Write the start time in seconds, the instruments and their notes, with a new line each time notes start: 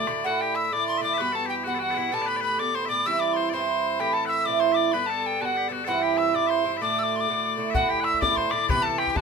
Already playing: bagpipes D5
0.07 bouzouki A2 D3 A3 F#4, bodhran
0.24 bouzouki A2 D3 D4 E4, bagpipes F#4, tin whistle F#5
0.40 bagpipes G4, tin whistle G5
0.55 bagpipes E5, tin whistle E6
0.71 bouzouki A2 D3 D4 E4, bagpipes D5, tin whistle D6
0.88 tin whistle C6
0.97 bouzouki A2 D3, bagpipes D5 E5
1.02 bouzouki D4 E4, tin whistle D6
1.13 bagpipes E5
1.18 bouzouki G2 E3 B3 F#4, bagpipes B4, tin whistle B5
1.32 bagpipes A4, tin whistle A5
1.46 bagpipes G4, tin whistle G5
1.64 bouzouki G2 E3 B3 F#4, bagpipes F#4, tin whistle F#5
1.74 bagpipes A4
1.79 bagpipes F#4, tin whistle F#5 G5
1.91 bagpipes A4
1.95 bouzouki G2 E3 B3 F#4, bagpipes E4, tin whistle F#5
2.12 bouzouki A2 D3 B3 G4, bagpipes A4, tin whistle A5
2.22 bagpipes D5
2.26 bagpipes B4, tin whistle B5
2.37 bagpipes D5
2.41 bagpipes B4, tin whistle B5
2.59 bouzouki A2 D3 B3 G4, bagpipes D5, tin whistle D6
2.75 bagpipes C5, tin whistle C6
2.85 bouzouki A2 D3, bagpipes D5 E5, tin whistle D6
2.90 bouzouki B3 G4
3.06 bouzouki G2 E3 C4 E4, bagpipes E5, tin whistle E6
3.20 bagpipes D5, tin whistle D6
3.33 bagpipes C5, tin whistle C6
3.50 bouzouki G2 E3, bagpipes D5, tin whistle C6
3.54 bouzouki C4 E4, bagpipes C5
4.00 bouzouki A2 E3 C4 E4, bagpipes G4, tin whistle G5
4.13 bagpipes A4, tin whistle A5
4.26 bagpipes F#5, tin whistle E6
4.30 bagpipes E5
4.45 bouzouki A2 E3 C4 E4, bagpipes D5, tin whistle D6
4.60 bagpipes C5, tin whistle C6
4.72 bagpipes E5, tin whistle D6
4.76 bagpipes D5
4.92 bouzouki G2 D3 B3 D4, bagpipes B4, tin whistle B5
5.06 bagpipes A4, tin whistle A5
5.23 tin whistle G5 A5
5.40 bouzouki G2 D3 B3 D4, bagpipes F#4, tin whistle A5
5.45 tin whistle F#5
5.57 bagpipes G4
5.68 bouzouki G2 D3 B3 D4, bagpipes A4
5.72 bagpipes F#4
5.84 bouzouki G2 E3 C4 E4, bagpipes A4, tin whistle F#5
5.89 bagpipes F#4
6.02 bagpipes G4, tin whistle G5
6.17 bagpipes E5, tin whistle E6
6.33 bouzouki G2 E3 C4 E4, bagpipes D5, tin whistle D6
6.46 bagpipes C5 E5, tin whistle C6
6.63 bouzouki G2 E3 C4 E4
6.77 bouzouki A2, bagpipes E5
6.82 bouzouki D3 A3 F#4, bagpipes D5, tin whistle D6
6.99 tin whistle E6
7.03 tin whistle D6
7.16 tin whistle C6
7.20 tin whistle D6
7.27 bouzouki A2 D3 A3 F#4
7.57 bouzouki A2 D3 A3 F#4
7.70 bagpipes E5
7.74 bouzouki A2 D3 D4 E4, bagpipes F#4, tin whistle F#5, bodhran
7.89 bagpipes G4, tin whistle G5
8.01 bagpipes F#5, tin whistle E6, bodhran
8.05 bagpipes E5
8.14 bodhran
8.21 bouzouki A2 D3 D4 E4, bagpipes D5, tin whistle D6, bodhran
8.36 bagpipes C5, tin whistle C6, bodhran
8.50 bouzouki A2 D3 D4 E4, bagpipes D5, tin whistle D6, bodhran
8.69 bouzouki C3 E3 B3 G4, bagpipes B4, tin whistle B5, bodhran
8.82 bagpipes A4, tin whistle A5
8.98 bagpipes G4, tin whistle G5, bodhran
9.07 tin whistle G5, bodhran
9.15 bouzouki C3 E3 B3, bagpipes F#4, tin whistle A5, bodhran